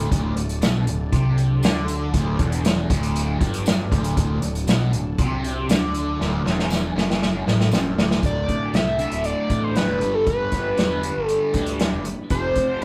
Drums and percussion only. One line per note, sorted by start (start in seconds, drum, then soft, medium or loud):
0.12 kick loud
0.12 closed hi-hat medium
0.37 closed hi-hat medium
0.49 closed hi-hat medium
0.62 snare loud
0.62 closed hi-hat medium
0.62 tambourine medium
0.87 closed hi-hat medium
1.13 kick medium
1.13 closed hi-hat medium
1.38 closed hi-hat medium
1.63 snare loud
1.63 closed hi-hat medium
1.63 tambourine medium
1.88 closed hi-hat medium
2.14 kick loud
2.14 closed hi-hat medium
2.39 kick medium
2.39 closed hi-hat medium
2.52 closed hi-hat medium
2.65 snare loud
2.65 closed hi-hat medium
2.65 tambourine medium
2.90 kick loud
2.90 closed hi-hat medium
3.03 closed hi-hat medium
3.16 closed hi-hat medium
3.41 kick loud
3.41 closed hi-hat medium
3.54 closed hi-hat medium
3.66 snare loud
3.66 closed hi-hat medium
3.66 tambourine medium
3.92 kick medium
3.92 closed hi-hat medium
4.04 closed hi-hat medium
4.17 kick medium
4.17 closed hi-hat medium
4.42 closed hi-hat medium
4.55 closed hi-hat medium
4.67 snare loud
4.67 closed hi-hat medium
4.67 tambourine medium
4.93 closed hi-hat medium
5.18 kick loud
5.18 closed hi-hat medium
5.44 closed hi-hat medium
5.69 snare loud
5.69 closed hi-hat medium
5.69 tambourine medium
5.95 closed hi-hat medium
6.21 snare medium
6.46 snare medium
6.59 snare medium
6.70 snare medium
6.70 tambourine medium
6.98 snare medium
7.10 snare medium
7.22 snare medium
7.48 snare medium
7.60 snare medium
7.71 snare medium
7.71 tambourine medium
7.99 snare medium
8.11 snare medium
8.23 kick medium
8.23 closed hi-hat medium
8.48 kick medium
8.48 closed hi-hat medium
8.74 snare loud
8.74 closed hi-hat medium
8.99 closed hi-hat medium
9.12 closed hi-hat medium
9.24 closed hi-hat medium
9.50 kick medium
9.50 closed hi-hat medium
9.75 snare medium
9.75 closed hi-hat medium
10.01 closed hi-hat medium
10.27 kick loud
10.27 closed hi-hat medium
10.52 kick medium
10.52 snare soft
10.52 closed hi-hat medium
10.78 snare medium
10.78 closed hi-hat medium
11.03 closed hi-hat medium
11.29 closed hi-hat medium
11.54 kick medium
11.54 closed hi-hat medium
11.66 closed hi-hat medium
11.80 snare loud
11.80 closed hi-hat medium
12.05 closed hi-hat medium
12.30 kick medium
12.30 closed hi-hat medium
12.56 kick medium
12.56 closed hi-hat medium